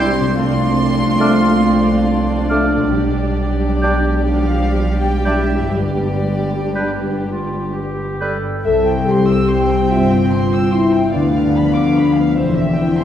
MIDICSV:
0, 0, Header, 1, 12, 480
1, 0, Start_track
1, 0, Key_signature, 0, "major"
1, 0, Tempo, 818554
1, 226, Time_signature, 6, 3, 24, 8
1, 706, Tempo, 875912
1, 2146, Tempo, 940439
1, 2626, Tempo, 991736
1, 3586, Tempo, 950872
1, 4546, Tempo, 826446
1, 6466, Tempo, 797872
1, 7114, End_track
2, 0, Start_track
2, 0, Title_t, "Flute"
2, 0, Program_c, 0, 73
2, 0, Note_on_c, 0, 91, 53
2, 100, Note_off_c, 0, 91, 0
2, 708, Note_on_c, 0, 89, 60
2, 815, Note_off_c, 0, 89, 0
2, 1414, Note_on_c, 0, 89, 53
2, 1528, Note_off_c, 0, 89, 0
2, 2139, Note_on_c, 0, 91, 47
2, 2252, Note_off_c, 0, 91, 0
2, 2857, Note_on_c, 0, 91, 39
2, 2970, Note_off_c, 0, 91, 0
2, 3586, Note_on_c, 0, 91, 39
2, 3699, Note_off_c, 0, 91, 0
2, 4316, Note_on_c, 0, 91, 37
2, 4428, Note_off_c, 0, 91, 0
2, 7114, End_track
3, 0, Start_track
3, 0, Title_t, "Violin section"
3, 0, Program_c, 1, 48
3, 0, Note_on_c, 1, 67, 62
3, 0, Note_on_c, 1, 72, 59
3, 202, Note_off_c, 1, 67, 0
3, 202, Note_off_c, 1, 72, 0
3, 227, Note_on_c, 1, 65, 56
3, 228, Note_on_c, 1, 74, 55
3, 1638, Note_off_c, 1, 65, 0
3, 1658, Note_on_c, 1, 67, 52
3, 3084, Note_off_c, 1, 74, 0
3, 3105, Note_on_c, 1, 71, 37
3, 4422, Note_off_c, 1, 67, 0
3, 4423, Note_off_c, 1, 71, 0
3, 4543, Note_on_c, 1, 76, 54
3, 4657, Note_off_c, 1, 76, 0
3, 4669, Note_on_c, 1, 79, 49
3, 4790, Note_off_c, 1, 79, 0
3, 4798, Note_on_c, 1, 84, 50
3, 4911, Note_on_c, 1, 88, 50
3, 4916, Note_off_c, 1, 84, 0
3, 5034, Note_off_c, 1, 88, 0
3, 5034, Note_on_c, 1, 84, 49
3, 5156, Note_off_c, 1, 84, 0
3, 5159, Note_on_c, 1, 79, 50
3, 5277, Note_off_c, 1, 79, 0
3, 5277, Note_on_c, 1, 76, 50
3, 5395, Note_off_c, 1, 76, 0
3, 5395, Note_on_c, 1, 79, 48
3, 5511, Note_on_c, 1, 84, 50
3, 5512, Note_off_c, 1, 79, 0
3, 5629, Note_off_c, 1, 84, 0
3, 5632, Note_on_c, 1, 88, 46
3, 5749, Note_off_c, 1, 88, 0
3, 5751, Note_on_c, 1, 84, 51
3, 5863, Note_on_c, 1, 79, 49
3, 5870, Note_off_c, 1, 84, 0
3, 5987, Note_off_c, 1, 79, 0
3, 5988, Note_on_c, 1, 74, 53
3, 6101, Note_off_c, 1, 74, 0
3, 6111, Note_on_c, 1, 77, 47
3, 6231, Note_off_c, 1, 77, 0
3, 6232, Note_on_c, 1, 83, 48
3, 6349, Note_on_c, 1, 86, 46
3, 6350, Note_off_c, 1, 83, 0
3, 6467, Note_off_c, 1, 86, 0
3, 6469, Note_on_c, 1, 83, 45
3, 6586, Note_on_c, 1, 77, 50
3, 6589, Note_off_c, 1, 83, 0
3, 6707, Note_off_c, 1, 77, 0
3, 6710, Note_on_c, 1, 72, 51
3, 6821, Note_off_c, 1, 72, 0
3, 6829, Note_on_c, 1, 76, 47
3, 6949, Note_off_c, 1, 76, 0
3, 6953, Note_on_c, 1, 79, 53
3, 7070, Note_off_c, 1, 79, 0
3, 7073, Note_on_c, 1, 84, 48
3, 7114, Note_off_c, 1, 84, 0
3, 7114, End_track
4, 0, Start_track
4, 0, Title_t, "Violin section"
4, 0, Program_c, 2, 48
4, 0, Note_on_c, 2, 84, 70
4, 220, Note_off_c, 2, 84, 0
4, 232, Note_on_c, 2, 84, 85
4, 1402, Note_off_c, 2, 84, 0
4, 2383, Note_on_c, 2, 77, 59
4, 2723, Note_off_c, 2, 77, 0
4, 2750, Note_on_c, 2, 79, 53
4, 2860, Note_on_c, 2, 76, 46
4, 2865, Note_off_c, 2, 79, 0
4, 3103, Note_off_c, 2, 76, 0
4, 3103, Note_on_c, 2, 74, 46
4, 3829, Note_off_c, 2, 74, 0
4, 4541, Note_on_c, 2, 79, 59
4, 5963, Note_off_c, 2, 79, 0
4, 5986, Note_on_c, 2, 77, 55
4, 6692, Note_off_c, 2, 77, 0
4, 6706, Note_on_c, 2, 76, 54
4, 7114, Note_off_c, 2, 76, 0
4, 7114, End_track
5, 0, Start_track
5, 0, Title_t, "Oboe"
5, 0, Program_c, 3, 68
5, 0, Note_on_c, 3, 72, 55
5, 72, Note_off_c, 3, 72, 0
5, 703, Note_on_c, 3, 74, 50
5, 785, Note_off_c, 3, 74, 0
5, 1418, Note_on_c, 3, 74, 47
5, 1502, Note_off_c, 3, 74, 0
5, 2144, Note_on_c, 3, 74, 43
5, 2227, Note_off_c, 3, 74, 0
5, 2862, Note_on_c, 3, 74, 42
5, 2945, Note_off_c, 3, 74, 0
5, 3586, Note_on_c, 3, 71, 37
5, 3671, Note_off_c, 3, 71, 0
5, 4320, Note_on_c, 3, 71, 36
5, 4403, Note_off_c, 3, 71, 0
5, 7114, End_track
6, 0, Start_track
6, 0, Title_t, "Clarinet"
6, 0, Program_c, 4, 71
6, 0, Note_on_c, 4, 64, 54
6, 70, Note_off_c, 4, 64, 0
6, 705, Note_on_c, 4, 62, 54
6, 786, Note_off_c, 4, 62, 0
6, 1421, Note_on_c, 4, 62, 46
6, 1504, Note_off_c, 4, 62, 0
6, 2145, Note_on_c, 4, 62, 48
6, 2228, Note_off_c, 4, 62, 0
6, 2861, Note_on_c, 4, 62, 39
6, 2945, Note_off_c, 4, 62, 0
6, 3589, Note_on_c, 4, 62, 39
6, 3673, Note_off_c, 4, 62, 0
6, 3831, Note_on_c, 4, 65, 41
6, 4078, Note_on_c, 4, 67, 37
6, 4085, Note_off_c, 4, 65, 0
6, 4321, Note_on_c, 4, 69, 41
6, 4329, Note_off_c, 4, 67, 0
6, 4548, Note_off_c, 4, 69, 0
6, 7114, End_track
7, 0, Start_track
7, 0, Title_t, "French horn section"
7, 0, Program_c, 5, 60
7, 0, Note_on_c, 5, 55, 62
7, 0, Note_on_c, 5, 64, 58
7, 202, Note_off_c, 5, 55, 0
7, 203, Note_off_c, 5, 64, 0
7, 226, Note_on_c, 5, 53, 56
7, 228, Note_on_c, 5, 62, 58
7, 1654, Note_on_c, 5, 55, 53
7, 1659, Note_off_c, 5, 53, 0
7, 3019, Note_off_c, 5, 62, 0
7, 3101, Note_on_c, 5, 59, 39
7, 4354, Note_off_c, 5, 59, 0
7, 4373, Note_off_c, 5, 55, 0
7, 4545, Note_on_c, 5, 69, 90
7, 4771, Note_off_c, 5, 69, 0
7, 4789, Note_on_c, 5, 67, 70
7, 5272, Note_on_c, 5, 65, 76
7, 5275, Note_off_c, 5, 67, 0
7, 5736, Note_off_c, 5, 65, 0
7, 5745, Note_on_c, 5, 64, 65
7, 5986, Note_on_c, 5, 62, 77
7, 5988, Note_off_c, 5, 64, 0
7, 7114, Note_off_c, 5, 62, 0
7, 7114, End_track
8, 0, Start_track
8, 0, Title_t, "Viola section"
8, 0, Program_c, 6, 48
8, 0, Note_on_c, 6, 55, 57
8, 0, Note_on_c, 6, 64, 63
8, 204, Note_off_c, 6, 55, 0
8, 205, Note_off_c, 6, 64, 0
8, 225, Note_on_c, 6, 57, 56
8, 225, Note_on_c, 6, 62, 54
8, 1637, Note_off_c, 6, 57, 0
8, 1657, Note_on_c, 6, 55, 51
8, 3083, Note_off_c, 6, 62, 0
8, 3101, Note_on_c, 6, 62, 39
8, 4421, Note_off_c, 6, 55, 0
8, 4421, Note_off_c, 6, 62, 0
8, 4546, Note_on_c, 6, 60, 59
8, 5966, Note_off_c, 6, 60, 0
8, 5989, Note_on_c, 6, 59, 50
8, 6694, Note_off_c, 6, 59, 0
8, 6710, Note_on_c, 6, 60, 49
8, 7114, Note_off_c, 6, 60, 0
8, 7114, End_track
9, 0, Start_track
9, 0, Title_t, "Harp"
9, 0, Program_c, 7, 46
9, 0, Note_on_c, 7, 48, 52
9, 0, Note_on_c, 7, 60, 46
9, 0, Note_on_c, 7, 64, 47
9, 0, Note_on_c, 7, 67, 45
9, 111, Note_off_c, 7, 48, 0
9, 118, Note_on_c, 7, 48, 52
9, 143, Note_on_c, 7, 57, 42
9, 171, Note_on_c, 7, 62, 40
9, 197, Note_on_c, 7, 65, 44
9, 220, Note_off_c, 7, 64, 0
9, 232, Note_off_c, 7, 67, 0
9, 956, Note_off_c, 7, 60, 0
9, 1558, Note_on_c, 7, 47, 49
9, 1583, Note_on_c, 7, 55, 41
9, 1601, Note_off_c, 7, 62, 0
9, 1608, Note_on_c, 7, 62, 37
9, 1627, Note_off_c, 7, 48, 0
9, 1633, Note_on_c, 7, 67, 37
9, 1639, Note_off_c, 7, 57, 0
9, 2352, Note_off_c, 7, 65, 0
9, 3016, Note_on_c, 7, 43, 33
9, 3032, Note_off_c, 7, 55, 0
9, 3038, Note_on_c, 7, 55, 29
9, 3059, Note_on_c, 7, 59, 29
9, 3075, Note_off_c, 7, 67, 0
9, 3078, Note_off_c, 7, 47, 0
9, 3080, Note_on_c, 7, 67, 29
9, 3583, Note_off_c, 7, 62, 0
9, 4519, Note_off_c, 7, 43, 0
9, 4541, Note_off_c, 7, 59, 0
9, 4549, Note_on_c, 7, 48, 58
9, 4785, Note_off_c, 7, 55, 0
9, 4792, Note_on_c, 7, 55, 47
9, 5030, Note_off_c, 7, 67, 0
9, 5037, Note_on_c, 7, 67, 43
9, 5271, Note_off_c, 7, 55, 0
9, 5278, Note_on_c, 7, 55, 42
9, 5506, Note_off_c, 7, 67, 0
9, 5513, Note_on_c, 7, 67, 46
9, 5751, Note_on_c, 7, 64, 41
9, 5993, Note_on_c, 7, 50, 57
9, 6010, Note_off_c, 7, 48, 0
9, 6010, Note_off_c, 7, 55, 0
9, 6010, Note_off_c, 7, 67, 0
9, 6011, Note_off_c, 7, 64, 0
9, 6233, Note_on_c, 7, 53, 41
9, 6470, Note_on_c, 7, 65, 37
9, 6475, Note_on_c, 7, 71, 41
9, 6709, Note_on_c, 7, 52, 54
9, 6729, Note_off_c, 7, 50, 0
9, 6729, Note_off_c, 7, 53, 0
9, 6730, Note_off_c, 7, 65, 0
9, 6731, Note_off_c, 7, 71, 0
9, 6952, Note_on_c, 7, 64, 41
9, 7114, Note_off_c, 7, 52, 0
9, 7114, Note_off_c, 7, 64, 0
9, 7114, End_track
10, 0, Start_track
10, 0, Title_t, "Bassoon"
10, 0, Program_c, 8, 70
10, 0, Note_on_c, 8, 55, 53
10, 69, Note_off_c, 8, 55, 0
10, 703, Note_on_c, 8, 57, 53
10, 785, Note_off_c, 8, 57, 0
10, 1419, Note_on_c, 8, 57, 50
10, 1503, Note_off_c, 8, 57, 0
10, 2148, Note_on_c, 8, 55, 44
10, 2229, Note_off_c, 8, 55, 0
10, 2858, Note_on_c, 8, 55, 33
10, 2943, Note_off_c, 8, 55, 0
10, 3585, Note_on_c, 8, 55, 36
10, 3671, Note_off_c, 8, 55, 0
10, 4321, Note_on_c, 8, 55, 30
10, 4403, Note_off_c, 8, 55, 0
10, 7114, End_track
11, 0, Start_track
11, 0, Title_t, "Cello section"
11, 0, Program_c, 10, 48
11, 0, Note_on_c, 10, 60, 61
11, 215, Note_off_c, 10, 60, 0
11, 222, Note_on_c, 10, 60, 67
11, 1397, Note_off_c, 10, 60, 0
11, 2382, Note_on_c, 10, 53, 50
11, 2723, Note_off_c, 10, 53, 0
11, 2744, Note_on_c, 10, 55, 42
11, 2860, Note_on_c, 10, 52, 40
11, 2862, Note_off_c, 10, 55, 0
11, 3103, Note_off_c, 10, 52, 0
11, 3106, Note_on_c, 10, 50, 36
11, 3816, Note_off_c, 10, 50, 0
11, 4546, Note_on_c, 10, 36, 65
11, 5155, Note_off_c, 10, 36, 0
11, 5274, Note_on_c, 10, 43, 59
11, 5867, Note_off_c, 10, 43, 0
11, 5989, Note_on_c, 10, 38, 63
11, 6587, Note_off_c, 10, 38, 0
11, 6710, Note_on_c, 10, 40, 55
11, 7114, Note_off_c, 10, 40, 0
11, 7114, End_track
12, 0, Start_track
12, 0, Title_t, "Double bass section"
12, 0, Program_c, 11, 48
12, 0, Note_on_c, 11, 36, 62
12, 1638, Note_off_c, 11, 36, 0
12, 1661, Note_on_c, 11, 35, 58
12, 3101, Note_on_c, 11, 31, 40
12, 3104, Note_off_c, 11, 35, 0
12, 4421, Note_off_c, 11, 31, 0
12, 4545, Note_on_c, 11, 36, 66
12, 5154, Note_off_c, 11, 36, 0
12, 5277, Note_on_c, 11, 31, 56
12, 5869, Note_off_c, 11, 31, 0
12, 5990, Note_on_c, 11, 38, 62
12, 6588, Note_off_c, 11, 38, 0
12, 6711, Note_on_c, 11, 28, 51
12, 7114, Note_off_c, 11, 28, 0
12, 7114, End_track
0, 0, End_of_file